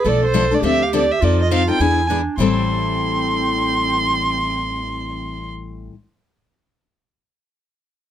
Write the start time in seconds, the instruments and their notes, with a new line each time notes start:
0.04 upright bass B1, steel-string acoustic guitar B2 F3 A3 D4 A4, clarinet A4, violin D5
0.25 violin C5
0.34 steel-string acoustic guitar B2 F3 A3 D4 A4
0.51 steel-string acoustic guitar A3 D4 A4, violin D5
0.62 upright bass D2, steel-string acoustic guitar D3 F3 C4 D4 A4, clarinet G4, violin E5
0.82 violin F5
0.93 steel-string acoustic guitar D3 F3 C4 D4 A4, violin D5
1.12 violin E5
1.21 upright bass F2, steel-string acoustic guitar F3 C4 D#4 A4, clarinet F4, violin D5
1.42 violin D#5
1.51 steel-string acoustic guitar F3 C4 D#4 A4, violin F5
1.67 steel-string acoustic guitar C4 D#4 A4, violin G5
1.79 upright bass E2, steel-string acoustic guitar E3 B3 D4 G#4, clarinet E4, violin G#5
2.09 steel-string acoustic guitar E3 B3 D4 G#4, clarinet D4
2.38 upright bass A1, steel-string acoustic guitar A2 E3 G3 C4 E4 A4, clarinet C4, violin C6